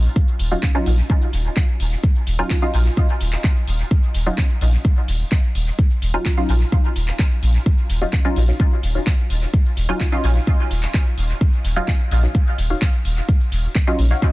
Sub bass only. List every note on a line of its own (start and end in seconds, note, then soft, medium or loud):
0.39 0.54 D#1 loud
0.86 1.01 A#1 medium
1.33 1.48 D#1 medium
1.80 1.95 D#1 medium
2.27 2.42 D#1 loud
2.74 2.89 A#1 medium
3.21 3.35 D#1 medium
3.68 3.82 D#1 medium
4.14 4.29 D#1 loud
4.61 4.76 A#1 medium
5.08 5.23 D#1 medium
5.55 5.70 D#1 medium
6.02 6.17 D#1 loud
6.49 6.64 A#1 medium
6.96 7.10 D#1 medium
7.43 7.57 A#1 medium
7.89 8.04 D#1 loud
8.36 8.51 A#1 medium
8.83 8.98 D#1 medium
9.30 9.45 D#1 medium
9.77 9.92 D#1 loud
10.24 10.38 A#1 medium
10.71 10.85 D#1 medium
11.18 11.32 D#1 medium
11.64 11.79 D#1 loud
12.11 12.26 A#1 medium
12.58 12.73 D#1 medium
13.05 13.20 D#1 medium
13.52 13.67 D#1 loud
13.99 14.13 A#1 medium